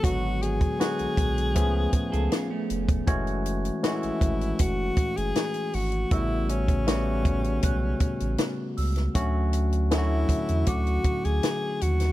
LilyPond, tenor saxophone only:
\new Staff \with { instrumentName = "Tenor saxophone" } { \time 4/4 \key a \major \tempo 4 = 79 fis'8 gis'2. r8 | r4 e'4 fis'8. gis'8. fis'8 | e'8 cis'2. r8 | r4 e'4 fis'8. gis'8. fis'8 | }